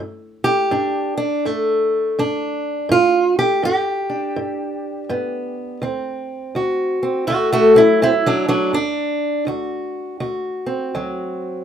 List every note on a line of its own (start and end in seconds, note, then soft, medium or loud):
0.00 0.65 G2 medium
0.44 1.17 G4 loud
0.71 1.39 G2 medium
0.71 1.17 D4 medium
1.17 1.45 D4 medium
1.45 2.12 G2 medium
1.45 2.18 A3 medium
2.19 2.85 G2 medium
2.19 2.91 D4 medium
2.89 3.57 G2 medium
2.89 3.36 F4 loud
3.39 3.64 G4 loud
3.63 4.31 G2 medium
3.63 5.83 G4 loud
4.10 5.82 D4 soft
4.36 5.04 G2 medium
5.09 5.77 G2 medium
5.09 5.79 B3 soft
5.82 6.49 D2 medium
5.82 7.02 C4 medium
6.55 7.22 D2 medium
6.55 7.27 F#4 medium
7.03 7.27 C4 soft
7.27 7.96 D2 medium
7.27 7.51 A3 medium
7.27 7.52 F#4 loud
7.53 7.76 A3 medium
7.53 7.77 F#4 loud
7.75 8.25 F#3 soft
7.75 8.01 E4 loud
8.02 8.69 D2 medium
8.02 8.09 C4 medium
8.02 8.26 E4 loud
8.26 8.47 F#3 medium
8.26 8.48 D4 loud
8.48 8.73 F#3 medium
8.48 8.73 D4 medium
8.73 9.41 D2 medium
8.73 9.47 D4 loud
9.47 10.14 D2 medium
9.47 10.19 F#4 medium
10.20 10.87 D2 medium
10.20 11.62 F#4 soft
10.66 11.63 C4 soft
10.95 11.61 D2 medium
10.95 11.64 F#3 soft